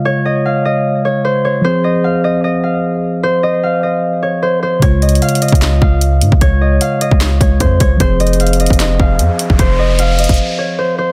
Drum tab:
HH |------------------------------------------------------------------------------------------------|------------------------------------------------------------------------------------------------|------------------------------------------------------------------------------------------------|x-----------x---x---x---x---x---x---x---x---x---x-----------------------x-----------x-----------|
CP |------------------------------------------------------------------------------------------------|------------------------------------------------------------------------------------------------|------------------------------------------------------------------------------------------------|------------------------------------------------x-----------------------------------------------|
SD |------------------------------------------------------------------------------------------------|------------------------------------------------------------------------------------------------|------------------------------------------------------------------------------------------------|------------------------------------------------o-----------------------------------------------|
BD |------------------------------------------------------------------------------------------------|------------------------------------------------------------------------------------------------|------------------------------------------------------------------------------------------------|o-----------------------------------------o-----------------o-----------------------------o-----|

HH |x-----------------------x-----------x-----------x-----------x-----------x-----------x-----------|x-----------x---x---x---x---x---x---x---x---x---x-----------------------x-----------x-----------|x-----------------------x-----------x--x--x--x--------------------------------------------------|
CP |------------------------------------------------x-----------------------------------------------|------------------------------------------------x-----------------------------------------------|------------------------------------------------------------------------------------------------|
SD |------------------------------------------------o-----------------------------------------------|------------------------------------------------o-----------------------------------------------|------------------------------------------------------------------------------------------------|
BD |o-----------------------------------------o-----------------o-----------o-----------o-----------|o-----------------------------------------o-----------------o-----------------------------o-----|o-----------------------------------------o-----------------------------------------------------|